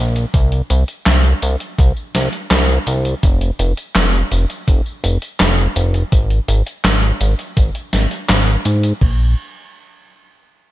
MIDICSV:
0, 0, Header, 1, 3, 480
1, 0, Start_track
1, 0, Tempo, 722892
1, 225, Time_signature, 4, 2, 24, 8
1, 7115, End_track
2, 0, Start_track
2, 0, Title_t, "Analog synth bass"
2, 0, Program_c, 0, 38
2, 0, Note_on_c, 0, 34, 90
2, 169, Note_off_c, 0, 34, 0
2, 226, Note_on_c, 0, 36, 100
2, 409, Note_off_c, 0, 36, 0
2, 466, Note_on_c, 0, 36, 90
2, 557, Note_off_c, 0, 36, 0
2, 705, Note_on_c, 0, 36, 84
2, 888, Note_off_c, 0, 36, 0
2, 946, Note_on_c, 0, 36, 87
2, 1037, Note_off_c, 0, 36, 0
2, 1185, Note_on_c, 0, 36, 87
2, 1277, Note_off_c, 0, 36, 0
2, 1426, Note_on_c, 0, 36, 86
2, 1518, Note_off_c, 0, 36, 0
2, 1665, Note_on_c, 0, 36, 98
2, 1849, Note_off_c, 0, 36, 0
2, 1905, Note_on_c, 0, 36, 90
2, 2088, Note_off_c, 0, 36, 0
2, 2145, Note_on_c, 0, 29, 105
2, 2329, Note_off_c, 0, 29, 0
2, 2386, Note_on_c, 0, 29, 91
2, 2477, Note_off_c, 0, 29, 0
2, 2625, Note_on_c, 0, 29, 83
2, 2808, Note_off_c, 0, 29, 0
2, 2866, Note_on_c, 0, 29, 85
2, 2957, Note_off_c, 0, 29, 0
2, 3105, Note_on_c, 0, 29, 87
2, 3197, Note_off_c, 0, 29, 0
2, 3345, Note_on_c, 0, 29, 85
2, 3437, Note_off_c, 0, 29, 0
2, 3585, Note_on_c, 0, 29, 97
2, 3768, Note_off_c, 0, 29, 0
2, 3825, Note_on_c, 0, 29, 86
2, 4008, Note_off_c, 0, 29, 0
2, 4065, Note_on_c, 0, 32, 102
2, 4248, Note_off_c, 0, 32, 0
2, 4305, Note_on_c, 0, 32, 94
2, 4397, Note_off_c, 0, 32, 0
2, 4545, Note_on_c, 0, 32, 83
2, 4729, Note_off_c, 0, 32, 0
2, 4785, Note_on_c, 0, 32, 84
2, 4877, Note_off_c, 0, 32, 0
2, 5026, Note_on_c, 0, 32, 86
2, 5117, Note_off_c, 0, 32, 0
2, 5266, Note_on_c, 0, 32, 83
2, 5357, Note_off_c, 0, 32, 0
2, 5506, Note_on_c, 0, 32, 96
2, 5689, Note_off_c, 0, 32, 0
2, 5746, Note_on_c, 0, 44, 92
2, 5929, Note_off_c, 0, 44, 0
2, 5986, Note_on_c, 0, 34, 96
2, 6209, Note_off_c, 0, 34, 0
2, 7115, End_track
3, 0, Start_track
3, 0, Title_t, "Drums"
3, 105, Note_on_c, 9, 42, 53
3, 105, Note_on_c, 9, 54, 31
3, 171, Note_off_c, 9, 42, 0
3, 171, Note_off_c, 9, 54, 0
3, 225, Note_on_c, 9, 36, 115
3, 225, Note_on_c, 9, 42, 77
3, 225, Note_on_c, 9, 54, 42
3, 292, Note_off_c, 9, 36, 0
3, 292, Note_off_c, 9, 42, 0
3, 292, Note_off_c, 9, 54, 0
3, 345, Note_on_c, 9, 42, 37
3, 345, Note_on_c, 9, 54, 21
3, 412, Note_off_c, 9, 42, 0
3, 412, Note_off_c, 9, 54, 0
3, 465, Note_on_c, 9, 42, 77
3, 465, Note_on_c, 9, 54, 73
3, 532, Note_off_c, 9, 42, 0
3, 532, Note_off_c, 9, 54, 0
3, 585, Note_on_c, 9, 42, 52
3, 585, Note_on_c, 9, 54, 30
3, 651, Note_off_c, 9, 42, 0
3, 651, Note_off_c, 9, 54, 0
3, 705, Note_on_c, 9, 38, 115
3, 705, Note_on_c, 9, 39, 92
3, 705, Note_on_c, 9, 42, 77
3, 705, Note_on_c, 9, 54, 42
3, 771, Note_off_c, 9, 38, 0
3, 771, Note_off_c, 9, 39, 0
3, 771, Note_off_c, 9, 42, 0
3, 771, Note_off_c, 9, 54, 0
3, 825, Note_on_c, 9, 42, 36
3, 825, Note_on_c, 9, 54, 21
3, 892, Note_off_c, 9, 42, 0
3, 892, Note_off_c, 9, 54, 0
3, 945, Note_on_c, 9, 42, 74
3, 945, Note_on_c, 9, 54, 73
3, 1011, Note_off_c, 9, 42, 0
3, 1011, Note_off_c, 9, 54, 0
3, 1065, Note_on_c, 9, 42, 51
3, 1065, Note_on_c, 9, 54, 32
3, 1131, Note_off_c, 9, 42, 0
3, 1131, Note_off_c, 9, 54, 0
3, 1185, Note_on_c, 9, 36, 114
3, 1185, Note_on_c, 9, 42, 77
3, 1185, Note_on_c, 9, 54, 41
3, 1252, Note_off_c, 9, 36, 0
3, 1252, Note_off_c, 9, 42, 0
3, 1252, Note_off_c, 9, 54, 0
3, 1305, Note_on_c, 9, 54, 21
3, 1372, Note_off_c, 9, 54, 0
3, 1426, Note_on_c, 9, 38, 62
3, 1426, Note_on_c, 9, 42, 78
3, 1426, Note_on_c, 9, 54, 74
3, 1492, Note_off_c, 9, 38, 0
3, 1492, Note_off_c, 9, 42, 0
3, 1492, Note_off_c, 9, 54, 0
3, 1545, Note_on_c, 9, 42, 51
3, 1545, Note_on_c, 9, 54, 31
3, 1612, Note_off_c, 9, 42, 0
3, 1612, Note_off_c, 9, 54, 0
3, 1666, Note_on_c, 9, 38, 118
3, 1666, Note_on_c, 9, 39, 96
3, 1666, Note_on_c, 9, 42, 75
3, 1666, Note_on_c, 9, 54, 40
3, 1732, Note_off_c, 9, 38, 0
3, 1732, Note_off_c, 9, 39, 0
3, 1732, Note_off_c, 9, 42, 0
3, 1732, Note_off_c, 9, 54, 0
3, 1786, Note_on_c, 9, 54, 20
3, 1852, Note_off_c, 9, 54, 0
3, 1905, Note_on_c, 9, 42, 78
3, 1905, Note_on_c, 9, 54, 75
3, 1972, Note_off_c, 9, 42, 0
3, 1972, Note_off_c, 9, 54, 0
3, 2026, Note_on_c, 9, 42, 53
3, 2026, Note_on_c, 9, 54, 32
3, 2092, Note_off_c, 9, 42, 0
3, 2092, Note_off_c, 9, 54, 0
3, 2145, Note_on_c, 9, 36, 111
3, 2146, Note_on_c, 9, 42, 75
3, 2146, Note_on_c, 9, 54, 42
3, 2212, Note_off_c, 9, 36, 0
3, 2212, Note_off_c, 9, 42, 0
3, 2212, Note_off_c, 9, 54, 0
3, 2266, Note_on_c, 9, 42, 38
3, 2266, Note_on_c, 9, 54, 22
3, 2332, Note_off_c, 9, 42, 0
3, 2332, Note_off_c, 9, 54, 0
3, 2386, Note_on_c, 9, 42, 78
3, 2386, Note_on_c, 9, 54, 74
3, 2452, Note_off_c, 9, 42, 0
3, 2452, Note_off_c, 9, 54, 0
3, 2506, Note_on_c, 9, 42, 51
3, 2506, Note_on_c, 9, 54, 31
3, 2572, Note_off_c, 9, 42, 0
3, 2572, Note_off_c, 9, 54, 0
3, 2625, Note_on_c, 9, 38, 113
3, 2625, Note_on_c, 9, 39, 100
3, 2625, Note_on_c, 9, 42, 80
3, 2625, Note_on_c, 9, 54, 42
3, 2692, Note_off_c, 9, 38, 0
3, 2692, Note_off_c, 9, 39, 0
3, 2692, Note_off_c, 9, 42, 0
3, 2692, Note_off_c, 9, 54, 0
3, 2746, Note_on_c, 9, 54, 21
3, 2812, Note_off_c, 9, 54, 0
3, 2866, Note_on_c, 9, 42, 77
3, 2866, Note_on_c, 9, 54, 72
3, 2932, Note_off_c, 9, 42, 0
3, 2932, Note_off_c, 9, 54, 0
3, 2986, Note_on_c, 9, 42, 51
3, 2986, Note_on_c, 9, 54, 33
3, 3053, Note_off_c, 9, 42, 0
3, 3053, Note_off_c, 9, 54, 0
3, 3105, Note_on_c, 9, 36, 113
3, 3106, Note_on_c, 9, 42, 79
3, 3106, Note_on_c, 9, 54, 43
3, 3172, Note_off_c, 9, 36, 0
3, 3172, Note_off_c, 9, 42, 0
3, 3172, Note_off_c, 9, 54, 0
3, 3226, Note_on_c, 9, 54, 21
3, 3292, Note_off_c, 9, 54, 0
3, 3345, Note_on_c, 9, 42, 78
3, 3345, Note_on_c, 9, 54, 75
3, 3412, Note_off_c, 9, 42, 0
3, 3412, Note_off_c, 9, 54, 0
3, 3466, Note_on_c, 9, 42, 49
3, 3466, Note_on_c, 9, 54, 32
3, 3532, Note_off_c, 9, 42, 0
3, 3532, Note_off_c, 9, 54, 0
3, 3585, Note_on_c, 9, 38, 115
3, 3585, Note_on_c, 9, 39, 101
3, 3585, Note_on_c, 9, 42, 79
3, 3585, Note_on_c, 9, 54, 42
3, 3651, Note_off_c, 9, 38, 0
3, 3651, Note_off_c, 9, 39, 0
3, 3651, Note_off_c, 9, 42, 0
3, 3651, Note_off_c, 9, 54, 0
3, 3705, Note_on_c, 9, 54, 22
3, 3772, Note_off_c, 9, 54, 0
3, 3825, Note_on_c, 9, 42, 79
3, 3825, Note_on_c, 9, 54, 74
3, 3892, Note_off_c, 9, 42, 0
3, 3892, Note_off_c, 9, 54, 0
3, 3945, Note_on_c, 9, 42, 53
3, 3945, Note_on_c, 9, 54, 32
3, 4011, Note_off_c, 9, 42, 0
3, 4011, Note_off_c, 9, 54, 0
3, 4065, Note_on_c, 9, 36, 117
3, 4065, Note_on_c, 9, 42, 82
3, 4065, Note_on_c, 9, 54, 42
3, 4132, Note_off_c, 9, 36, 0
3, 4132, Note_off_c, 9, 42, 0
3, 4132, Note_off_c, 9, 54, 0
3, 4186, Note_on_c, 9, 42, 39
3, 4186, Note_on_c, 9, 54, 21
3, 4252, Note_off_c, 9, 42, 0
3, 4252, Note_off_c, 9, 54, 0
3, 4306, Note_on_c, 9, 42, 82
3, 4306, Note_on_c, 9, 54, 75
3, 4372, Note_off_c, 9, 42, 0
3, 4372, Note_off_c, 9, 54, 0
3, 4426, Note_on_c, 9, 42, 53
3, 4426, Note_on_c, 9, 54, 32
3, 4492, Note_off_c, 9, 42, 0
3, 4492, Note_off_c, 9, 54, 0
3, 4546, Note_on_c, 9, 38, 118
3, 4546, Note_on_c, 9, 39, 99
3, 4546, Note_on_c, 9, 42, 80
3, 4546, Note_on_c, 9, 54, 42
3, 4612, Note_off_c, 9, 38, 0
3, 4612, Note_off_c, 9, 39, 0
3, 4612, Note_off_c, 9, 42, 0
3, 4612, Note_off_c, 9, 54, 0
3, 4666, Note_on_c, 9, 42, 38
3, 4666, Note_on_c, 9, 54, 21
3, 4732, Note_off_c, 9, 42, 0
3, 4732, Note_off_c, 9, 54, 0
3, 4785, Note_on_c, 9, 42, 78
3, 4785, Note_on_c, 9, 54, 70
3, 4852, Note_off_c, 9, 42, 0
3, 4852, Note_off_c, 9, 54, 0
3, 4906, Note_on_c, 9, 42, 52
3, 4906, Note_on_c, 9, 54, 31
3, 4972, Note_off_c, 9, 42, 0
3, 4972, Note_off_c, 9, 54, 0
3, 5025, Note_on_c, 9, 36, 117
3, 5025, Note_on_c, 9, 42, 80
3, 5025, Note_on_c, 9, 54, 41
3, 5092, Note_off_c, 9, 36, 0
3, 5092, Note_off_c, 9, 42, 0
3, 5092, Note_off_c, 9, 54, 0
3, 5145, Note_on_c, 9, 42, 37
3, 5145, Note_on_c, 9, 54, 20
3, 5212, Note_off_c, 9, 42, 0
3, 5212, Note_off_c, 9, 54, 0
3, 5265, Note_on_c, 9, 38, 62
3, 5265, Note_on_c, 9, 42, 80
3, 5265, Note_on_c, 9, 54, 70
3, 5332, Note_off_c, 9, 38, 0
3, 5332, Note_off_c, 9, 42, 0
3, 5332, Note_off_c, 9, 54, 0
3, 5385, Note_on_c, 9, 42, 53
3, 5385, Note_on_c, 9, 54, 31
3, 5452, Note_off_c, 9, 42, 0
3, 5452, Note_off_c, 9, 54, 0
3, 5506, Note_on_c, 9, 38, 117
3, 5506, Note_on_c, 9, 39, 103
3, 5506, Note_on_c, 9, 42, 82
3, 5506, Note_on_c, 9, 54, 40
3, 5572, Note_off_c, 9, 38, 0
3, 5572, Note_off_c, 9, 39, 0
3, 5572, Note_off_c, 9, 42, 0
3, 5572, Note_off_c, 9, 54, 0
3, 5627, Note_on_c, 9, 42, 37
3, 5627, Note_on_c, 9, 54, 21
3, 5693, Note_off_c, 9, 42, 0
3, 5693, Note_off_c, 9, 54, 0
3, 5746, Note_on_c, 9, 42, 80
3, 5746, Note_on_c, 9, 54, 74
3, 5812, Note_off_c, 9, 42, 0
3, 5812, Note_off_c, 9, 54, 0
3, 5866, Note_on_c, 9, 42, 55
3, 5866, Note_on_c, 9, 54, 31
3, 5932, Note_off_c, 9, 42, 0
3, 5932, Note_off_c, 9, 54, 0
3, 5985, Note_on_c, 9, 36, 105
3, 5985, Note_on_c, 9, 49, 90
3, 6052, Note_off_c, 9, 36, 0
3, 6052, Note_off_c, 9, 49, 0
3, 7115, End_track
0, 0, End_of_file